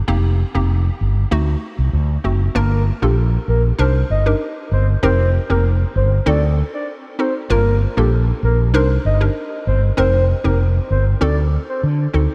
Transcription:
0.08 fretless electric bass F1, synth pluck A#3 C4 D#4 G4
0.55 fretless electric bass F1, synth pluck A#3 C4 D#4 G4
1.01 fretless electric bass G1
1.31 fretless electric bass D2, synth pluck A3 C4 D#4 F#4
1.78 fretless electric bass C2
1.93 fretless electric bass D2
2.24 fretless electric bass F#1, synth pluck A3 C4 D#4 F#4
2.55 fretless electric bass G1, synth pluck A#3 D4 F4 A#4, soft synth lead A#4
3.02 fretless electric bass A#1, synth pluck A#3 D4 F4 A4, soft synth lead G4
3.48 fretless electric bass A#1, soft synth lead A#4
3.79 fretless electric bass C2, synth pluck D4 D#4 G4 A#4, soft synth lead C5
4.10 fretless electric bass G1, soft synth lead D#5
4.26 synth pluck D4 D#4 G4 A#4
4.71 fretless electric bass G1, soft synth lead C5
5.03 fretless electric bass F1, synth pluck C4 D#4 G4 A#4, soft synth lead C5
5.50 fretless electric bass F1, synth pluck C4 D#4 G4 A#4, soft synth lead A#4
5.95 fretless electric bass G1, soft synth lead C5
6.26 fretless electric bass D2, synth pluck C4 D#4 F#4 A4, soft synth lead D5
6.74 soft synth lead D5
7.19 synth pluck C4 D#4 F#4 A4, soft synth lead C5
7.50 fretless electric bass G1, synth pluck A#3 D4 F4 A#4, soft synth lead A#4
7.97 fretless electric bass A#1, synth pluck A#3 D4 F4 A4, soft synth lead G4
8.43 fretless electric bass A#1, soft synth lead A#4
8.74 fretless electric bass C2, synth pluck D4 D#4 G4 A#4, soft synth lead C5
9.05 fretless electric bass G1, soft synth lead D#5
9.21 synth pluck D4 D#4 G4 A#4
9.67 fretless electric bass G1, soft synth lead C5
9.97 fretless electric bass F1, synth pluck C4 D#4 G4 A#4, soft synth lead C5
10.44 fretless electric bass F1, synth pluck C4 D#4 G4 A#4, soft synth lead A#4
10.90 fretless electric bass G1, soft synth lead C5
11.21 fretless electric bass D2, synth pluck C4 D#4 F#4 A4, soft synth lead D5
11.69 soft synth lead C5
11.83 fretless electric bass D3
12.13 fretless electric bass D2, synth pluck C4 D#4 F#4 A4

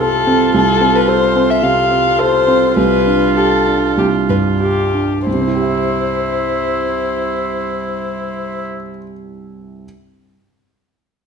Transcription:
Already playing: grand piano C2 C3 C4, viola F4
0.00 grand piano A4, violin A4
0.27 grand piano C4
0.54 grand piano C2, violin A4
0.81 grand piano C4
0.95 violin B4
1.08 grand piano A4, violin C5
1.35 grand piano C4
1.50 violin E5
1.63 grand piano C3, violin F5
1.90 grand piano C4
2.18 grand piano A4, violin C5
2.47 grand piano C4
2.77 grand piano C2, viola F4, violin B4
3.07 grand piano D4
3.36 grand piano G4, violin A4
3.66 grand piano D4
3.97 grand piano C2, violin G4
4.29 grand piano G2, violin B4
4.61 grand piano G4, violin G4
4.94 grand piano D4
5.26 grand piano C2, viola E4, violin C5
5.33 grand piano C3
5.41 grand piano C4
5.48 grand piano E4
5.55 grand piano G4
5.62 grand piano E5

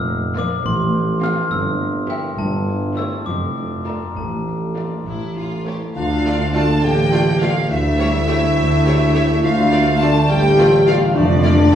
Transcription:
Already playing: tuba F1, double bass section F1, cello section F2, harp A#2 F3 F4, glockenspiel E6
0.08 harp A#3
0.37 harp F3, viola section A#3, violin section F4 D5, glockenspiel D6
0.65 tuba A1, double bass section A1, harp A2, cello section A2, glockenspiel C6
0.94 harp C4
1.23 viola section C4, harp F4 A4, violin section F4 F5, glockenspiel F6
1.51 double bass section G1, tuba G1, harp G2, cello section G2, glockenspiel E6
1.81 harp A#3
2.10 viola section A#3, harp E4 A#4, violin section G4 E5, glockenspiel G5
2.39 double bass section G1, tuba G1, cello section G2, harp G2, glockenspiel A5
2.68 harp C#4
2.96 viola section A3, violin section E4 C#5, harp E4 A4, glockenspiel E6
3.26 double bass section F1, tuba F1, harp F2, cello section F2, glockenspiel D6
3.57 harp D4
3.86 viola section A3, harp F4 A4, violin section F4 D5, glockenspiel A#5
4.17 double bass section A1, tuba A1, harp A2, cello section A2, glockenspiel A5
4.47 harp D4
4.77 viola section A3, violin section F4 D5, harp F4 A4
5.06 double bass section A1, tuba A1, cello section A2, harp A2, violin section E4
5.37 harp C#4, violin section F4
5.67 viola section A3, harp E4 A4, violin section G4 C#5
5.96 double bass section D2, cello section D2, tuba D2, harp D3, clarinet D4, french horn section F4, violin section F5, flute F5
6.11 harp A3
6.25 viola section A3 F4, harp D4, violin section D5
6.40 harp F4
6.54 viola section A3 F4, harp A4, french horn section A4, violin section D5 A5, flute A5
6.69 harp D5
6.83 tuba A1, double bass section A1, cello section A2, clarinet A#3, french horn section G4, harp F5, violin section G5, flute G5
6.98 harp A5
7.12 viola section A3 F4, violin section D5, harp F5
7.27 harp D5
7.41 viola section A3 F4, french horn section F4, harp A4, violin section D5 F5, flute F5
7.56 harp D4
7.70 double bass section D2, cello section D2, tuba D2, harp D3, clarinet A3, french horn section E4, flute E5, violin section E5
7.85 harp A3
7.99 clarinet G3, viola section A3 G4, harp C#4, violin section C#5
8.14 harp G4
8.28 clarinet A3, viola section A3 G4, harp A4, violin section C#5
8.42 harp C#5
8.56 double bass section D2, cello section D2, tuba D2, harp G5
8.70 harp A5
8.85 viola section A3 G4, violin section C#5, harp G5
8.99 harp C#5
9.14 viola section A3 G4, harp A4, violin section C#5
9.29 harp C#4
9.43 double bass section D2, tuba D2, cello section D2, harp D3, clarinet A3, french horn section F4, flute F5, violin section F5
9.57 harp A3
9.73 viola section A3 F4, violin section D5
9.86 harp F4
10.00 viola section A3 F4, harp A4, french horn section A4, violin section D5 A5, flute A5
10.14 harp D5
10.29 tuba A1, double bass section A1, cello section A2, clarinet G3, french horn section G4, harp F5, flute G5, violin section G5
10.43 harp A5
10.57 viola section A3 F4, violin section D5, harp F5
10.72 harp D5
10.87 viola section A3 F4, french horn section F4, harp A4, violin section D5 F5, flute F5
11.01 harp D4
11.14 tuba F1, double bass section F1, harp F2, cello section F2, clarinet A3, french horn section D4, flute D5, violin section D5
11.29 harp F3
11.43 viola section A3 F4, clarinet A#3, harp D4, violin section D5
11.59 harp F4

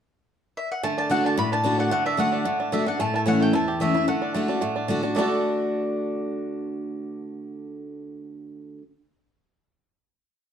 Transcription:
0.57 mandolin E5
0.72 mandolin F#5
0.83 steel-string acoustic guitar D3, five-string banjo A3, mandolin A5
0.98 five-string banjo D4, mandolin A5
1.10 steel-string acoustic guitar D3 A3 D4 F#4, five-string banjo A3, mandolin F#5
1.25 five-string banjo D4, mandolin A5
1.37 steel-string acoustic guitar A2, five-string banjo A3, mandolin B5
1.52 five-string banjo D4, mandolin A5
1.64 steel-string acoustic guitar D3 A3 D4 F#4, five-string banjo D4
1.79 five-string banjo D4, mandolin F#5
1.91 steel-string acoustic guitar D3, five-string banjo A3, mandolin F#5
2.06 five-string banjo D4, mandolin E5
2.17 steel-string acoustic guitar D3 A3 D4 F#4, five-string banjo A3, mandolin F#5
2.32 five-string banjo D4
2.45 steel-string acoustic guitar A2, five-string banjo A3
2.60 five-string banjo D4
2.72 steel-string acoustic guitar D3 A3 D4 F#4, five-string banjo D4, mandolin E5
2.86 five-string banjo D4, steel-string acoustic guitar D4 F#4, mandolin F#5
2.99 steel-string acoustic guitar A2, five-string banjo A3, mandolin A5
3.14 five-string banjo E4, mandolin A5
3.26 steel-string acoustic guitar E3 A3 C#4 E4, five-string banjo C#4, mandolin F#5
3.40 five-string banjo A3, mandolin G5
3.53 steel-string acoustic guitar E2, five-string banjo E4, mandolin A5
3.68 five-string banjo G4
3.80 steel-string acoustic guitar E3 A3 C#4 E4, five-string banjo A3, mandolin E5
3.94 steel-string acoustic guitar C#4 E4, five-string banjo E4
4.08 steel-string acoustic guitar D3, five-string banjo A3, mandolin F#5
4.22 five-string banjo D4
4.34 steel-string acoustic guitar D3 A3 D4 F#4, five-string banjo A3
4.48 five-string banjo D4, steel-string acoustic guitar D4 F#4
4.61 steel-string acoustic guitar A2, five-string banjo A3
4.76 five-string banjo D4
4.88 steel-string acoustic guitar D3 A3 D4 F#4, five-string banjo D4
5.03 five-string banjo D4, steel-string acoustic guitar D4 F#4
5.15 steel-string acoustic guitar D3 A3 D4 F#4, five-string banjo A3 D4, mandolin D5
5.20 five-string banjo F#4 A4

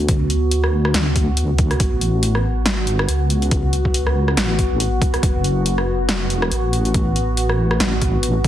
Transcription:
Already playing: wobble bass D2, ambient pad B3 F#4
0.08 kick, closed hi-hat
0.30 closed hi-hat
0.51 closed hi-hat
0.64 cross-stick
0.85 cross-stick
0.94 wobble bass D2, snare, closed hi-hat
1.16 kick, closed hi-hat
1.37 closed hi-hat
1.58 kick, closed hi-hat
1.71 cross-stick, closed hi-hat
1.80 wobble bass A1, kick, closed hi-hat
2.01 closed hi-hat
2.23 closed hi-hat
2.35 cross-stick
2.66 snare, closed hi-hat
2.70 wobble bass G#1
2.87 closed hi-hat
2.95 wobble bass G1
2.99 cross-stick
3.08 wobble bass C#2, closed hi-hat
3.30 closed hi-hat
3.42 closed hi-hat
3.51 kick, closed hi-hat
3.73 closed hi-hat
3.85 kick
3.94 closed hi-hat
4.07 cross-stick
4.28 cross-stick
4.37 wobble bass A1, snare, closed hi-hat
4.59 kick, closed hi-hat
4.80 closed hi-hat
5.02 kick, closed hi-hat
5.14 cross-stick, closed hi-hat
5.23 wobble bass F#1, kick, closed hi-hat
5.44 closed hi-hat
5.66 closed hi-hat
5.78 cross-stick
6.09 wobble bass F1, snare, closed hi-hat
6.30 closed hi-hat
6.38 wobble bass E1
6.42 cross-stick
6.51 wobble bass A1, closed hi-hat
6.73 closed hi-hat
6.85 closed hi-hat
6.94 kick, closed hi-hat
7.16 closed hi-hat
7.37 closed hi-hat
7.49 cross-stick
7.71 cross-stick
7.80 wobble bass A1, snare, closed hi-hat
8.02 kick, closed hi-hat
8.23 closed hi-hat
8.44 kick, closed hi-hat

